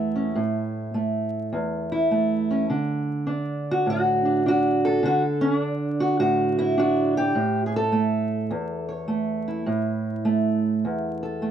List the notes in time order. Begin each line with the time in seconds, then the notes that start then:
Already playing: E2 A3 C#4 E4
0.15 C#4
0.35 A2
0.94 A3
1.53 E2
1.92 E4
2.11 A3
2.51 C#4
2.70 D3
3.27 D4
3.71 F#4
3.86 A2 F#4
4.25 D4
4.46 D4 F#4
4.85 A4
5.03 D3 F#4
5.41 C#4
5.55 D4
6.00 F#4
6.19 A2 F#4
6.59 E4
6.78 D4 F#4
7.17 G4
7.35 A2
7.66 G#4
7.76 A4
7.92 A3
8.51 E2
8.89 C#5
9.08 A3
9.48 E4
9.66 A2
10.25 A3
10.85 E2
11.23 A4
11.42 A3